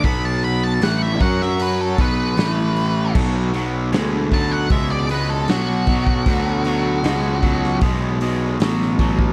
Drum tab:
CC |----------------|x---------------|----------------|
HH |o-o-o-o-o-o-o-o-|--o-o-o-o-o-o-o-|o-o-o-o-o-o-o-o-|
SD |----o--o----o---|----o-------o---|----o--o----oo--|
BD |o-----o---o-----|o-----o-o-----oo|o-----o-o-----oo|